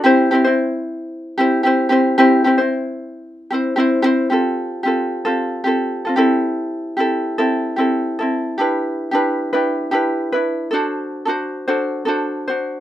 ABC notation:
X:1
M:4/4
L:1/16
Q:"Swing 16ths" 1/4=112
K:Clyd
V:1 name="Ukulele"
[CEGc]2 [CEGc] [CEc]6- [CEc] [CEGc]2 [CEGc]2 [CEGc]2 | [CEGc]2 [CEGc] [CEc]6- [CEc] [CEGc]2 [CEGc]2 [CEGc]2 | [C=FGA]4 [CFGA]3 [CFGA]3 [CFGA]3 [CFA] [CEGA]2- | [CEGA]4 [CEGA]3 [CEGA]3 [CEGA]3 [CEA]3 |
[DEGB]4 [DEGB]3 [DEGB]3 [DEGB]3 [DEB]3 | [DFAc]4 [DFAc]3 [DFAc]3 [DFAc]3 [DFc]3 |]